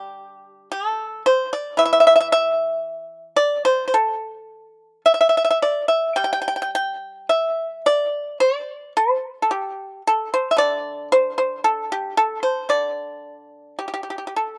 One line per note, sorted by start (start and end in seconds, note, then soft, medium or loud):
0.00 0.72 D3 soft
0.00 2.83 G3 soft
0.00 0.69 G4 medium
0.72 1.22 A4 medium
1.26 1.51 C5 medium
1.53 1.77 D5 medium
1.77 5.04 E3 medium
1.77 1.84 E5 medium
1.85 1.91 E5 medium
1.93 1.99 E5 medium
2.00 2.06 E5 medium
2.07 2.13 E5 medium
2.16 2.19 E5 medium
2.20 2.27 E5 medium
2.32 3.35 E5 medium
3.36 3.63 D5 medium
3.65 3.84 C5 medium
3.88 3.94 C5 soft
3.94 5.01 A4 medium
5.06 5.12 E5 medium
5.14 5.19 E5 soft
5.21 5.27 E5 soft
5.29 5.35 E5 soft
5.37 5.43 E5 medium
5.45 5.49 E5 soft
5.50 5.57 E5 soft
5.62 5.88 D5 medium
5.88 6.15 E5 soft
6.16 9.50 G3 soft
6.16 6.23 G5 medium
6.24 6.32 G5 soft
6.33 6.40 G5 medium
6.42 6.47 G5 soft
6.48 6.55 G5 medium
6.56 6.61 G5 soft
6.62 6.70 G5 medium
6.75 7.26 G5 medium
7.29 7.81 E5 medium
7.86 8.37 D5 medium
8.40 8.92 D5 medium
8.97 9.41 C5 medium
9.42 9.50 A4 soft
9.51 10.01 G4 medium
10.07 10.31 A4 medium
10.34 10.51 C5 medium
10.51 10.58 E5 medium
10.57 12.68 D3 soft
10.57 11.08 D5 medium
11.12 11.36 C5 medium
11.38 11.63 C5 medium
11.64 11.89 A4 medium
11.92 12.16 G4 medium
12.17 12.42 A4 medium
12.43 12.68 C5 medium
12.69 14.58 D3 soft
12.69 13.76 D5 medium
13.79 13.86 G4 soft
13.88 13.92 G4 soft
13.94 14.02 G4 soft
14.03 14.09 G4 soft
14.10 14.17 G4 soft
14.18 14.25 G4 soft
14.27 14.34 G4 soft
14.36 14.58 A4 medium